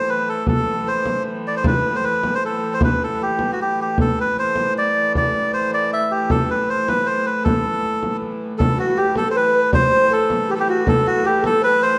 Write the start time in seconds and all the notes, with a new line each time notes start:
Already playing: A2 E3
0.09 B4
0.29 A4
0.47 A4, frame drum
0.67 frame drum
0.87 C5, frame drum
1.06 frame drum
1.48 D5
1.57 C5
1.64 B4, frame drum
1.84 frame drum
1.96 C5
2.04 B4, frame drum
2.23 frame drum
2.35 C5
2.45 A4
2.74 C5
2.81 B4, frame drum
3.00 A4, frame drum
3.23 G4
3.39 frame drum
3.53 F#4
3.62 G4
3.82 G4
3.98 A2 E3 A4, frame drum
4.18 B4, frame drum
4.37 C5, frame drum
4.56 frame drum
4.78 D5
5.15 D5, frame drum
5.34 frame drum
5.53 C5, frame drum
5.74 D5
5.93 E5
6.11 G4
6.30 A4, frame drum
6.49 B4, frame drum
6.69 C5, frame drum
6.88 B4, frame drum
7.06 C5
7.26 B4
7.44 A4, frame drum
7.65 frame drum
7.84 frame drum
8.03 frame drum
8.22 frame drum
8.58 A2 E3 A4, frame drum
8.77 F#4, frame drum
8.96 G4
9.15 A4, frame drum
9.31 C5
9.36 B4
9.54 B4
9.72 C5 D5, frame drum
9.92 frame drum
10.10 A4
10.30 frame drum
10.46 G4 A4
10.51 G4 A4
10.59 G4
10.69 F#4
10.86 A4, frame drum
11.06 F#4, frame drum
11.24 G4
11.42 A4, frame drum
11.62 B4 C5
11.66 B4
11.82 C5